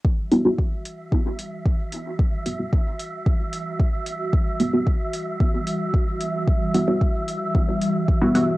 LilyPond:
<<
  \new Staff \with { instrumentName = "Synth texture" } { \time 4/4 \key e \minor \tempo 4 = 112 e''1~ | e''1~ | e''1~ | e''1 | }
  \new Staff \with { instrumentName = "Synth stab" } { \time 4/4 \key e \minor r8 <g b e' fis'>16 <g b e' fis'>16 r2. | r8 <g b e' fis'>16 <g b e' fis'>16 r2. | r8 <g b e' fis'>16 <g b e' fis'>16 r2. | r8 <g b e' fis'>16 <g b e' fis'>16 r2 r16 <g b e' fis'>16 <g b e' fis'>8 | }
  \new Staff \with { instrumentName = "Analog synth pad" } { \clef bass \time 4/4 \key e \minor <e g fis'>1~ | <e g fis'>1~ | <e g fis'>1~ | <e g fis'>1 | }
  \new DrumStaff \with { instrumentName = "Drums" } \drummode { \time 4/4 bd8 hho8 bd8 hho8 bd8 hho8 bd8 hho8 | bd8 hho8 bd8 hho8 bd8 hho8 bd8 hho8 | bd8 hho8 bd8 hho8 bd8 hho8 bd8 hho8 | bd8 hho8 bd8 hho8 bd8 hho8 bd8 hho8 | }
>>